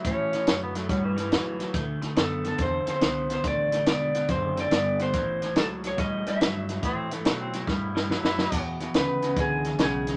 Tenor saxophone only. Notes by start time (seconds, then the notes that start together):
0.06 C#4
0.49 C#4
0.63 B3
0.76 A3
0.90 F#3
1.04 E3
6.84 C4
7.13 A3
7.40 C4
7.70 E4
8.10 E4
8.25 E4